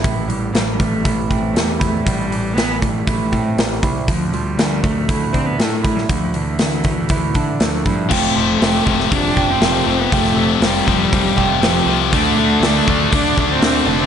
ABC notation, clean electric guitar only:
X:1
M:4/4
L:1/8
Q:1/4=119
K:Flyd
V:1 name="Clean electric guitar"
A,, E, E, G, E C G, E | A,, E, E, G, E C G, E | D, F, F, A, E D A, E | D,3 A, E D A, E |
[F,A,CG]2 [F,A,CG] [A,CG]2 [A,CG] [F,A,CG]2 | [F,A,CG]2 [F,A,CG] [A,CG]2 [A,CG] [F,A,CG]2 | z8 |]